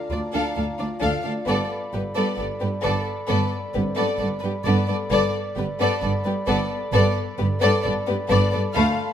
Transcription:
Already playing: glass harmonica F4 D5 F5, violin section A5 A#5
0.10 double bass section D2, cello section D2, violin section D4 F4 D5
0.33 cello section D2, violin section D4 A4 F5
0.56 double bass section D2, cello section D2, violin section D4 A4 F5
0.79 cello section D2, violin section D4 F4 D5
1.00 double bass section D2, cello section D2, violin section D4 A4 F5
1.23 cello section D2, violin section D4 A4 F5
1.47 double bass section G1, cello section G2, violin section B3 A4 D5, glass harmonica A4 D5 B5
1.93 double bass section G1, cello section G2, violin section B3 G4 B4
2.15 cello section G2, violin section B3 A4 D5
2.37 double bass section G1, cello section G2, violin section B3 A4 D5
2.60 cello section G2, violin section B3 G4 B4
2.81 double bass section G1, violin section B3 A4 D5
2.86 cello section G2
3.27 double bass section G1, cello section G2, violin section B3 A4 D5
3.73 double bass section G1, cello section G2, violin section B3 G4 B4, celesta C4 C5
3.96 cello section G2, violin section B3 A4 D5
4.19 double bass section G1, cello section G2, violin section B3 A4 D5
4.40 cello section G2, violin section B3 B4
4.44 violin section G4
4.64 double bass section G1, cello section G2, violin section B3 A4 D5
4.87 cello section G2, violin section B3 A4 D5
5.10 double bass section G1, cello section G2, violin section B3 A4 D5, glass harmonica A4 D5 B5
5.57 double bass section G1, cello section G2, violin section B3 G4 B4
5.79 cello section G2, violin section B3 A4 D5
6.02 double bass section G1, cello section G2, violin section B3 A4 D5
6.24 cello section G2, violin section B3 G4 B4
6.46 double bass section G1, cello section G2, violin section B3 A4 D5
6.93 double bass section G1, cello section G2, violin section B3 A4 D5
7.38 double bass section G1, cello section G2, violin section B3 G4 B4
7.61 cello section G2, violin section B3 A4 D5
7.83 double bass section G1, cello section G2, violin section B3 A4 D5
8.06 cello section G2, violin section B3 G4 B4
8.28 double bass section G1, cello section G2, violin section B3 A4 D5
8.52 cello section G2, violin section B3 A4 D5
8.73 double bass section D2, cello section D2, violin section A3 A4 F5 A5 B5 C6, glass harmonica A4 F5 A5, celesta B5

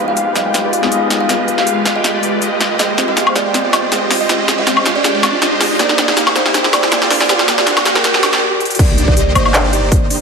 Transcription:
Already playing: grand piano G#3 B3 D#4 F4, riser
0.00 808-style bass D2
0.08 supersaw synth G#3 F4 G4 B4 F5, kalimba F5
0.17 closed hi-hat
0.35 808-style bass D2, kalimba D#5, snare, closed hi-hat
0.46 supersaw synth G#3 F4 G4 B4 G5
0.54 snare, closed hi-hat
0.64 supersaw synth G#3 F4 G4 B4 D5
0.73 kalimba F5, closed hi-hat
0.81 grand piano G#3 B3 D#4, snare
0.85 grand piano F4
0.92 supersaw synth G#3 F4 G4 B4 D#5, closed hi-hat
1.10 snare, closed hi-hat
1.20 supersaw synth G#3 F4 G4 B4 D#5, kalimba F5
1.27 808-style bass G1, grand piano G#3 B3 D#4 F4, supersaw synth G#3 F4 G4 B4 D#5, snare, closed hi-hat
1.48 808-style bass D2, closed hi-hat
1.58 supersaw synth G#3 F4 G4 B4 F5, kalimba F5, snare
1.67 closed hi-hat
1.85 808-style bass D2, snare, closed hi-hat
1.96 supersaw synth G#3 F4 G4 B4 G5, kalimba D#5
2.04 snare, closed hi-hat
2.14 supersaw synth G#3 F4 G4 B4 D5
2.23 closed hi-hat
2.42 supersaw synth G#3 F4 G4 B4 D#5, closed hi-hat
2.60 snare, closed hi-hat
2.71 supersaw synth G#3 F4 G4 B4 D#5
2.79 808-style bass F1, supersaw synth G#3 F4 G4 C5 D#5, synth arpeggio sound G#4, kalimba D#5, snare, closed hi-hat
2.98 synth arpeggio sound C4, snare, closed hi-hat
3.08 supersaw synth G#3 F4 G4 C5 F5, kalimba D#5
3.17 synth arpeggio sound F4, snare, closed hi-hat
3.27 high woodblock
3.35 808-style bass C2, synth arpeggio sound G#4, kalimba D5, snare, closed hi-hat
3.45 supersaw synth G#3 F4 G4 C5 G5
3.54 synth arpeggio sound C4, snare, closed hi-hat
3.64 supersaw synth G#3 F4 G4 C5 D5
3.73 synth arpeggio sound F4, kalimba D#5, snare, closed hi-hat, high woodblock
3.92 supersaw synth G#3 F4 G4 C5 D#5, synth arpeggio sound G#4, snare, closed hi-hat
4.11 synth arpeggio sound C4, snare, open hi-hat
4.20 supersaw synth G#3 F4 G4 C5 D#5, kalimba D#5
4.29 808-style bass F1, supersaw synth G#3 F4 G4 C5 D#5, synth arpeggio sound F4, snare, closed hi-hat
4.48 808-style bass C2, synth arpeggio sound G#4, snare, closed hi-hat
4.58 supersaw synth G#3 F4 G4 C5 F5, kalimba D#5
4.67 synth arpeggio sound C4, snare, closed hi-hat
4.77 high woodblock
4.86 808-style bass C2, synth arpeggio sound F4, snare, closed hi-hat
4.96 supersaw synth G#3 F4 G4 C5 G5, kalimba D5
5.04 synth arpeggio sound G#4, snare, closed hi-hat
5.14 supersaw synth G#3 F4 G4 C5 D5
5.23 synth arpeggio sound C4, snare, closed hi-hat, high woodblock
5.42 supersaw synth G#3 F4 G4 C5 D#5, synth arpeggio sound F4, snare, closed hi-hat
5.61 synth arpeggio sound G#4, snare, open hi-hat
5.71 supersaw synth G#3 F4 G4 C5 D#5
5.79 808-style bass A#1, supersaw synth A#3 G4 G#4 C5 D5, synth arpeggio sound A#3, kalimba D5, snare, closed hi-hat
5.89 snare
5.98 808-style bass F1, synth arpeggio sound D4, snare, closed hi-hat
6.08 supersaw synth A#3 G4 G#4 C5 F5, kalimba D5, snare
6.17 synth arpeggio sound G4, snare, closed hi-hat
6.27 snare, high woodblock
6.35 808-style bass F1, synth arpeggio sound A#3, kalimba C5, snare, closed hi-hat
6.46 supersaw synth A#3 G4 G#4 C5 G5, snare
6.54 synth arpeggio sound D4, snare, closed hi-hat
6.64 supersaw synth A#3 G4 G#4 C5 D5, snare
6.73 synth arpeggio sound G4, kalimba D5, snare, closed hi-hat, high woodblock
6.83 snare
6.92 synth arpeggio sound A#3, supersaw synth A#3 G4 G#4 C5 D5, snare, closed hi-hat
7.02 snare
7.11 synth arpeggio sound D4, snare, open hi-hat
7.21 supersaw synth A#3 G4 G#4 C5 D5, kalimba D5, snare
7.29 808-style bass A#1, supersaw synth A#3 G4 G#4 C5 D5, synth arpeggio sound G4, snare, closed hi-hat
7.39 snare
7.48 synth arpeggio sound A#3, snare, closed hi-hat
7.58 supersaw synth A#3 G4 G#4 C5 F5, kalimba D5, snare
7.67 synth arpeggio sound D4, snare, closed hi-hat
7.77 snare, high woodblock
7.85 808-style bass F1, synth arpeggio sound G4, snare, closed hi-hat
7.95 supersaw synth A#3 G4 G#4 C5 G5, kalimba A#4, snare
8.04 synth arpeggio sound A#3, snare, closed hi-hat
8.14 supersaw synth A#3 G4 G#4 C5 D5, snare
8.23 supersaw synth A#3 G4 G#4 C5 D5, synth arpeggio sound D4, snare, closed hi-hat, high woodblock
8.33 snare
8.60 closed hi-hat
8.65 closed hi-hat
8.70 closed hi-hat
8.75 closed hi-hat
8.79 808-style bass C2, supersaw synth A#3 D#4 G4 C5 D5, synth arpeggio sound A#3, kalimba D5, kick, closed hi-hat, crash, impact
8.98 synth arpeggio sound D4, closed hi-hat
9.08 supersaw synth A#3 D#4 G4 C5 D#5, kalimba D5, kick
9.17 synth arpeggio sound G4, closed hi-hat
9.35 808-style bass G1, synth arpeggio sound A#3, kalimba C5, closed hi-hat, high woodblock
9.45 supersaw synth A#3 D#4 G4 C5 F5, high woodblock
9.54 synth arpeggio sound D4, clap, closed hi-hat
9.64 supersaw synth A#3 D#4 G4 C5 D5
9.73 supersaw synth A#3 D#4 G4 C5 D5, synth arpeggio sound G4, kalimba D5, closed hi-hat
9.92 synth arpeggio sound A#3, kick, closed hi-hat
10.10 synth arpeggio sound D4, open hi-hat

